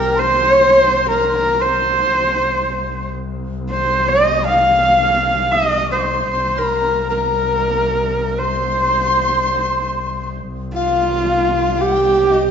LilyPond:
<<
  \new Staff \with { instrumentName = "Dizi" } { \time 4/4 \tempo 4 = 115 g''16 c'''4.~ c'''16 bes''16. c'''32 bes''8 c'''4~ | c'''4.~ c'''16. r4 r32 c'''8. ees'''16~ | ees'''8 f''2 ees'''8. c'''8. | c'''8 bes''4 bes''2 r8 |
c'''2.~ c'''8. r16 | r8 f''4. f''8 g''4 ees''8 | }
  \new Staff \with { instrumentName = "Horsehead fiddle" } { \time 4/4 bes'16 c''4.~ c''16 bes'4 c''4~ | c''4.~ c''16 r4 r16 c''8. ees''16~ | ees''8 f''2 ees''8. c''8.~ | c''8 bes'4 bes'2~ bes'8 |
c''2.~ c''8. r16 | r8 f'2 g'4. | }
  \new Staff \with { instrumentName = "Double bass" } { \clef bass \time 4/4 c,1 | c,1~ | c,1 | c,1~ |
c,1 | c,1 | }
>>